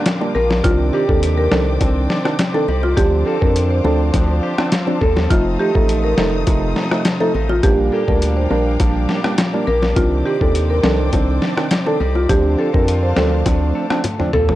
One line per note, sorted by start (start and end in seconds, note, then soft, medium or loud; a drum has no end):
0.00 0.64 A#2 medium
0.00 0.96 D3 medium
0.00 0.35 G3 medium
0.00 0.35 D4 medium
0.00 0.35 F4 medium
0.00 0.62 A#4 medium
0.00 0.62 F5 medium
0.00 0.62 G5 medium
0.00 5.27 D6 medium
0.06 snare loud
0.06 closed hi-hat medium
0.06 high bongo medium
0.21 0.33 G3 medium
0.21 0.33 A#3 medium
0.21 0.33 D4 medium
0.21 high bongo medium
0.35 0.62 A#1 medium
0.35 1.81 G3 medium
0.35 0.93 D4 medium
0.35 0.71 F4 medium
0.35 0.47 A#4 medium
0.35 low bongo medium
0.50 snare medium
0.50 high bongo medium
0.64 0.91 C2 loud
0.64 2.97 C3 medium
0.64 1.05 D#3 loud
0.64 1.05 C4 medium
0.64 1.05 D4 loud
0.64 0.76 F4 loud
0.64 7.59 C5 medium
0.64 2.95 D5 medium
0.64 2.95 G5 medium
0.64 kick loud
0.64 closed hi-hat medium
0.64 high bongo medium
0.93 2.67 D#4 medium
0.93 1.05 G4 medium
0.93 1.21 G4 medium
0.93 2.09 D5 medium
1.08 1.48 D#2 medium
1.08 1.48 D#3 medium
1.08 1.48 C4 medium
1.08 1.49 D4 medium
1.08 1.19 A4 medium
1.08 kick loud
1.22 2.68 G4 medium
1.22 closed hi-hat medium
1.38 1.48 A#4 medium
1.51 1.78 C2 loud
1.51 1.78 D#3 medium
1.51 1.79 C4 medium
1.51 1.79 D4 medium
1.51 1.63 A4 medium
1.51 snare loud
1.51 low bongo medium
1.80 2.08 C2 loud
1.80 2.21 D#3 medium
1.80 2.22 C4 medium
1.80 3.26 C4 medium
1.80 2.22 D4 loud
1.80 kick loud
1.80 closed hi-hat medium
1.80 high bongo medium
2.10 2.69 D5 medium
2.10 snare medium
2.25 2.37 D#3 medium
2.25 2.37 C4 medium
2.25 2.37 D4 medium
2.25 cross-stick loud
2.25 high bongo medium
2.39 snare loud
2.39 closed hi-hat medium
2.39 high bongo medium
2.54 2.66 D#3 medium
2.54 2.66 C4 medium
2.54 2.67 D4 medium
2.54 2.65 A4 medium
2.54 high bongo medium
2.68 2.95 C2 medium
2.68 3.04 D#4 medium
2.68 3.04 G4 medium
2.68 3.27 D5 medium
2.68 low bongo medium
2.83 2.94 F4 medium
2.83 high bongo medium
2.97 3.24 D2 loud
2.97 5.30 D3 medium
2.97 3.38 F3 loud
2.97 3.38 C4 medium
2.97 3.38 D4 loud
2.97 3.09 G4 loud
2.97 7.59 F5 medium
2.97 7.59 A5 medium
2.97 kick loud
2.97 closed hi-hat medium
2.97 high bongo medium
3.26 5.01 C4 medium
3.26 3.54 D4 medium
3.26 3.38 A4 medium
3.26 4.43 A4 medium
3.41 3.81 F2 medium
3.41 3.81 F3 medium
3.41 3.81 C4 medium
3.41 3.82 D4 medium
3.41 3.52 A#4 medium
3.41 kick loud
3.56 5.01 D4 medium
3.56 closed hi-hat medium
3.71 3.81 C5 medium
3.84 4.11 D2 loud
3.84 4.11 F3 medium
3.84 4.12 C4 medium
3.84 4.12 D4 medium
3.84 3.96 A4 medium
3.84 high bongo medium
3.84 low bongo medium
4.13 4.41 D2 loud
4.13 4.54 F3 loud
4.13 5.59 F3 medium
4.13 4.55 C4 medium
4.13 4.55 D4 loud
4.13 kick loud
4.13 closed hi-hat medium
4.13 high bongo medium
4.43 4.59 G4 medium
4.58 4.70 F3 medium
4.58 4.70 C4 medium
4.58 4.70 D4 medium
4.58 5.01 A4 medium
4.58 cross-stick loud
4.58 high bongo medium
4.72 snare loud
4.72 closed hi-hat medium
4.72 high bongo medium
4.87 4.99 F3 medium
4.87 4.99 C4 medium
4.87 4.99 D4 medium
4.87 high bongo medium
5.01 5.28 D#2 medium
5.01 5.60 C4 medium
5.01 5.37 D4 medium
5.01 5.13 A4 medium
5.01 5.63 A4 medium
5.01 kick medium
5.01 low bongo medium
5.16 snare medium
5.16 high bongo medium
5.30 5.57 F1 loud
5.30 7.63 F2 medium
5.30 5.71 F3 loud
5.30 5.71 A3 medium
5.30 5.71 D#4 loud
5.30 5.42 F4 loud
5.30 7.61 D#6 loud
5.30 kick loud
5.30 closed hi-hat medium
5.30 high bongo medium
5.59 7.33 D#3 medium
5.59 5.87 A3 medium
5.59 6.75 D#4 medium
5.59 5.71 G4 medium
5.75 6.14 A1 medium
5.75 6.14 F3 medium
5.75 6.14 A3 medium
5.75 6.15 D#4 medium
5.75 5.85 A4 medium
5.75 kick medium
5.89 7.34 A3 medium
5.89 closed hi-hat medium
6.04 6.14 A#4 medium
6.18 6.45 F1 medium
6.18 6.45 F3 medium
6.18 6.45 A3 medium
6.18 6.45 D#4 medium
6.18 6.29 A4 medium
6.18 snare loud
6.18 low bongo medium
6.47 6.74 F1 loud
6.47 7.70 C3 medium
6.47 6.88 F3 loud
6.47 6.88 A3 medium
6.47 6.88 D#4 loud
6.47 kick loud
6.47 closed hi-hat medium
6.47 high bongo medium
6.76 7.34 D#4 medium
6.76 snare medium
6.91 7.03 F3 medium
6.91 7.03 A3 medium
6.91 7.04 D#4 medium
6.91 cross-stick loud
6.91 high bongo medium
7.05 snare loud
7.05 closed hi-hat medium
7.05 high bongo medium
7.20 7.32 F3 medium
7.20 7.33 A3 medium
7.20 7.33 D#4 medium
7.20 7.31 A4 medium
7.20 high bongo medium
7.34 7.61 A1 loud
7.34 7.70 D#3 medium
7.34 7.70 A3 medium
7.34 7.70 D#4 medium
7.34 low bongo medium
7.49 7.60 F4 medium
7.49 high bongo medium
7.63 7.90 A#1 loud
7.63 9.96 A#2 medium
7.63 8.04 G3 loud
7.63 8.04 A#3 medium
7.63 8.04 D4 loud
7.63 7.75 G4 loud
7.63 9.94 A#4 medium
7.63 9.94 F5 medium
7.63 9.94 G5 medium
7.63 14.55 D6 medium
7.63 kick loud
7.63 closed hi-hat medium
7.63 high bongo medium
7.92 9.66 A#3 medium
7.92 8.21 D4 medium
7.92 9.08 G4 medium
7.92 8.04 A4 medium
8.08 8.47 D2 medium
8.08 8.47 G3 medium
8.08 8.48 A#3 medium
8.08 8.48 D4 medium
8.08 8.18 A#4 medium
8.08 kick medium
8.22 9.67 D4 medium
8.22 closed hi-hat medium
8.37 8.47 C5 medium
8.50 8.78 A#1 medium
8.50 8.78 G3 medium
8.50 8.78 A#3 medium
8.50 8.78 D4 medium
8.50 8.62 A#4 medium
8.50 low bongo medium
8.80 9.07 A#1 loud
8.80 10.02 F3 medium
8.80 9.21 G3 medium
8.80 9.21 A#3 medium
8.80 9.21 D4 loud
8.80 kick loud
8.80 closed hi-hat medium
8.80 high bongo medium
9.09 9.68 G4 medium
9.09 snare medium
9.24 9.36 G3 medium
9.24 9.36 A#3 medium
9.24 9.37 D4 medium
9.24 cross-stick loud
9.24 high bongo medium
9.38 snare loud
9.38 closed hi-hat medium
9.38 high bongo medium
9.53 9.65 G3 medium
9.53 9.66 A#3 medium
9.53 9.66 D4 medium
9.53 high bongo medium
9.67 9.94 A#1 medium
9.67 10.03 A#3 medium
9.67 10.26 D4 medium
9.67 10.26 G4 medium
9.67 9.79 A#4 medium
9.67 low bongo medium
9.82 snare medium
9.82 high bongo medium
9.96 10.23 C2 loud
9.96 12.29 C3 medium
9.96 10.37 D#3 medium
9.96 10.37 C4 medium
9.96 10.37 D4 loud
9.96 10.08 F4 loud
9.96 12.27 C5 medium
9.96 12.27 D5 medium
9.96 12.27 G5 medium
9.96 kick loud
9.96 closed hi-hat medium
9.96 high bongo medium
10.25 11.99 D#4 medium
10.25 10.37 G4 medium
10.25 10.53 G4 medium
10.25 11.42 D5 medium
10.41 10.80 D#2 medium
10.41 10.80 D#3 medium
10.41 10.81 C4 medium
10.41 10.81 D4 medium
10.41 10.51 A4 medium
10.41 kick loud
10.55 12.00 G4 medium
10.55 closed hi-hat medium
10.70 10.80 A#4 medium
10.84 11.11 C2 loud
10.84 11.11 D#3 medium
10.84 11.11 C4 medium
10.84 11.11 D4 medium
10.84 10.95 A4 medium
10.84 snare loud
10.84 low bongo medium
11.13 11.40 C2 loud
11.13 11.54 D#3 medium
11.13 12.58 C4 medium
11.13 11.54 C4 medium
11.13 11.54 D4 loud
11.13 kick loud
11.13 closed hi-hat medium
11.13 high bongo medium
11.42 12.01 D5 medium
11.42 snare medium
11.57 11.69 D#3 medium
11.57 11.69 C4 medium
11.57 11.69 D4 medium
11.57 cross-stick loud
11.57 high bongo medium
11.71 snare loud
11.71 closed hi-hat medium
11.71 high bongo medium
11.86 11.98 D#3 medium
11.86 11.98 C4 medium
11.86 11.99 D4 loud
11.86 11.97 A4 medium
11.86 high bongo medium
12.00 12.27 C2 medium
12.00 12.36 D#4 medium
12.00 12.36 G4 medium
12.00 12.61 D5 medium
12.00 low bongo medium
12.15 12.26 F4 medium
12.15 high bongo medium
12.29 12.56 D2 loud
12.29 14.55 D3 medium
12.29 12.70 F3 loud
12.29 12.70 C4 medium
12.29 12.71 D4 loud
12.29 12.41 G4 loud
12.29 14.55 C5 medium
12.29 14.55 F5 medium
12.29 14.55 A5 medium
12.29 kick loud
12.29 closed hi-hat medium
12.29 high bongo medium
12.58 14.33 C4 medium
12.58 12.87 F4 medium
12.58 12.70 A4 medium
12.58 13.75 A4 medium
12.74 13.13 F2 medium
12.74 13.13 F3 medium
12.74 13.14 C4 medium
12.74 13.14 D4 medium
12.74 12.84 A#4 medium
12.74 kick loud
12.88 14.33 F4 medium
12.88 closed hi-hat medium
13.03 13.13 C5 medium
13.16 13.44 D2 loud
13.16 13.44 F3 medium
13.16 13.44 C4 medium
13.16 13.44 D4 medium
13.16 13.28 A4 medium
13.16 snare loud
13.16 low bongo medium
13.45 13.73 D2 loud
13.45 13.87 F3 loud
13.45 14.55 A3 medium
13.45 13.87 C4 medium
13.45 13.87 D4 loud
13.45 kick loud
13.45 closed hi-hat medium
13.45 high bongo medium
13.75 14.34 A4 medium
13.90 14.02 F3 medium
13.90 14.02 C4 medium
13.90 14.02 D4 medium
13.90 cross-stick loud
13.90 high bongo medium
14.04 closed hi-hat medium
14.04 high tom medium
14.04 high bongo medium
14.19 14.31 F3 medium
14.19 14.31 C4 medium
14.19 14.32 D4 medium
14.19 mid tom medium
14.19 high bongo medium
14.33 14.55 D#2 medium
14.33 14.55 C4 medium
14.33 14.55 F4 medium
14.33 14.45 A4 medium
14.33 14.55 A4 medium
14.33 mid tom loud
14.33 low bongo medium
14.49 floor tom loud
14.49 high bongo medium